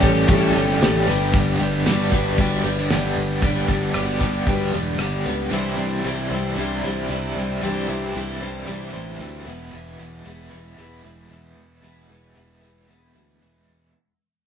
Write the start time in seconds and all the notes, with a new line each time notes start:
Already playing: A1 E3
0.01 G3 C#4 G4 A4, kick, open hi-hat
0.27 A1 A2 E3 G3 C#4 G4 A4, kick, open hi-hat
0.53 G1 G3 C#4 G4 A4, open hi-hat
0.69 snare
0.80 A1 E3 G3 C#4 G4, snare, open hi-hat
1.05 G1 D3 G3 B3 D4 G4 B4, open hi-hat
1.09 G2
1.33 G1 G2 D3 G3 B3 D4 G4, kick, open hi-hat
1.59 G1 G3 B3 D4 G4, open hi-hat
1.86 G1 G3 B3 D4 F#4 G4 B4, snare, open hi-hat
2.11 G1 G3 B3 D4 F#4 G4 B4, kick, open hi-hat
2.38 G1 G2 D3 G3 B3 D4 F#4 G4 B4, kick, open hi-hat
2.63 G1 G3 B3 D4 G4 B4, open hi-hat
2.78 snare
2.90 G1 G3 B3 D4 G4, snare, open hi-hat
3.16 G1, open hi-hat
3.42 G1 G2 D3 G3 B3 D4 G4 B4, kick, open hi-hat
3.68 G1 G3 B3 D4 G4, kick, open hi-hat
3.94 G1 G3 B3 D4 F#4 G4 B4, cross-stick, open hi-hat
4.20 G3 B3 D4 F#4 G4 B4, kick, open hi-hat
4.46 G1 G2 D3 G3 B3 D4 F#4 G4 B4, kick, open hi-hat
4.72 E1 G3 B3 D4 G4 B4, open hi-hat
4.98 G1 G3 B3 D4 G4, cross-stick, open hi-hat
5.25 C#2 D4 F#4 B4, open hi-hat
5.50 C2 C3 E3 G3 C4 D4 E4 C5
5.77 C2 G3 C4 E4
6.04 C2 E3 G3 C4 D4 E4 C5
6.30 C2 G3 C4 D4 E4 C5
6.57 C2 C3 E3 G3 C4 D4 E4 C5
6.83 C2 G3 C4 D4 E4 C5
7.09 C2 E3 G3 C4 E4
7.35 C2 G3 D4 E4 C5
7.62 C2 C3 E3 G3 C4 D4 E4 C5
7.88 C2 G3 C4 E4
8.14 C2 E3 G3 C4 D4 E4
8.18 C5
8.41 G3 C4 D4 E4 C5
8.67 C2 C3 E3 G3 C4 D4 E4 C5
8.93 A1 G3 C4 D4 E4 C5
9.20 D2 E3 G3 C4 E4
9.45 E1 E2 B2 E3 G#3 B3 E4 G#4 B4
9.72 E1 E2 B2 E3 G#3 B3 E4
9.98 E1 E3 G#3 B3 E4
10.24 E1 E3 G#3 B3 E4 G#4 B4
10.50 E1 E3 G#3 B3 E4 G#4 B4
10.77 E1 E2 B2 E3 G#3 B3 E4 G#4 B4
11.03 E1 E3 G#3 B3 E4 G#4 B4
11.29 E1 E3 G#3 B3 E4
11.56 E1
11.81 E1 E2 B2 E3 G#3 B3 E4 G#4 B4
12.08 E1 E3 G#3 B3 E4
12.34 E1 E3 G#3 B3 E4 G#4
12.39 B4
12.61 E3 G#3 B3 E4 G#4 B4
12.86 E1 E2 B2 E3 G#3 B3 E4 G#4
12.91 B4
13.13 D2 E3 G#3 B3 E4 G#4 B4
13.40 E1 E3 G#3 B3 E4
13.68 E1